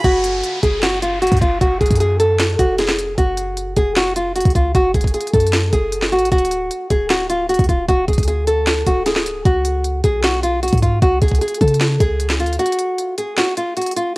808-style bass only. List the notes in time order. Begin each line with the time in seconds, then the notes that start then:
0.04 F#1
0.63 F#1
1.32 F#2
1.42 F#1
1.61 F#1
1.81 F#1
1.91 F#2
2.59 F1
3.18 F#1
3.77 F1
4.45 C#2
4.75 F#1
4.94 F#1
5.34 F#2
5.73 F#1
6.12 G#1
6.32 D1
6.90 D1
7.59 D2
7.69 D1
7.89 D1
8.08 D1
8.18 D2
8.87 C#1
9.45 C#2
10.04 B1
10.73 G#2
11.02 C#2
11.22 C#2
11.61 C#3
12.00 C#2
12.40 D2